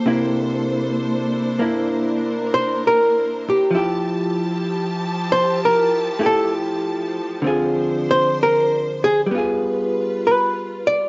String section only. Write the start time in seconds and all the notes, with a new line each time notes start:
Already playing: A#3 A4 C5
0.04 D4 E4
1.88 A#4
3.74 F3 E4 G4 A5
7.40 D4 C5
9.28 F4 B4